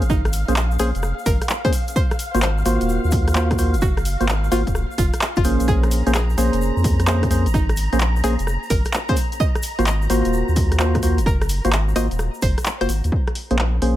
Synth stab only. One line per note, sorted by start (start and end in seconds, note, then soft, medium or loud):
0.48 0.54 A#3 medium
0.48 0.54 C#4 medium
0.48 0.54 G#4 medium
0.48 0.54 C5 loud
0.80 0.90 A#3 loud
0.80 0.90 C#4 medium
0.80 0.90 G#4 medium
0.80 0.90 C5 loud
1.65 1.72 A#3 medium
1.65 1.72 C#4 medium
1.65 1.72 G#4 medium
1.65 1.72 C5 medium
2.35 2.40 A#3 medium
2.35 2.40 F4 medium
2.35 2.40 F#4 medium
2.35 2.40 C5 loud
2.66 3.34 A#3 medium
2.66 3.34 F4 medium
2.66 3.34 F#4 medium
2.66 3.34 C5 loud
3.35 3.57 A#3 medium
3.35 3.57 F4 medium
3.35 3.57 F#4 medium
3.35 3.57 C5 medium
3.59 3.75 A#3 medium
3.59 3.75 F4 medium
3.59 3.75 F#4 medium
3.59 3.75 C5 medium
4.21 4.26 A#3 medium
4.21 4.26 F4 medium
4.21 4.26 F#4 medium
4.21 4.26 C5 medium
4.52 4.62 A#3 loud
4.52 4.62 F4 medium
4.52 4.62 F#4 medium
4.52 4.62 C5 loud
5.45 6.03 A#3 loud
5.45 6.03 C#4 medium
5.45 6.03 G#4 medium
5.45 6.03 C5 loud
6.07 6.12 A#3 medium
6.07 6.12 C#4 medium
6.07 6.12 G#4 medium
6.07 6.12 C5 loud
6.38 7.06 A#3 medium
6.38 7.06 C#4 medium
6.38 7.06 G#4 medium
6.38 7.06 C5 loud
7.07 7.29 A#3 medium
7.07 7.29 C#4 medium
7.07 7.29 G#4 medium
7.07 7.29 C5 loud
7.31 7.47 A#3 medium
7.31 7.47 C#4 medium
7.31 7.47 G#4 medium
7.31 7.47 C5 medium
7.93 7.98 A#3 medium
7.93 7.98 C#4 medium
7.93 7.98 G#4 medium
7.93 7.98 C5 medium
8.24 8.34 A#3 loud
8.24 8.34 C#4 medium
8.24 8.34 G#4 medium
8.24 8.34 C5 loud
9.09 9.16 A#3 medium
9.09 9.16 C#4 medium
9.09 9.16 G#4 medium
9.09 9.16 C5 medium
9.79 9.84 A#3 medium
9.79 9.84 F4 medium
9.79 9.84 F#4 medium
9.79 9.84 C5 loud
10.10 10.78 A#3 medium
10.10 10.78 F4 medium
10.10 10.78 F#4 medium
10.10 10.78 C5 loud
10.80 11.01 A#3 medium
10.80 11.01 F4 medium
10.80 11.01 F#4 medium
10.80 11.01 C5 medium
11.03 11.19 A#3 medium
11.03 11.19 F4 medium
11.03 11.19 F#4 medium
11.03 11.19 C5 medium
11.65 11.70 A#3 medium
11.65 11.70 F4 medium
11.65 11.70 F#4 medium
11.65 11.70 C5 loud
11.96 12.06 A#3 loud
11.96 12.06 F4 medium
11.96 12.06 F#4 medium
11.96 12.06 C5 loud
12.81 12.90 A#3 medium
12.81 12.90 F4 medium
12.81 12.90 F#4 medium
12.81 12.90 C5 medium
13.51 13.56 A#3 medium
13.51 13.56 C#4 medium
13.51 13.56 G#4 medium
13.51 13.56 C5 loud
13.82 13.96 A#3 medium
13.82 13.96 C#4 medium
13.82 13.96 G#4 medium
13.82 13.96 C5 loud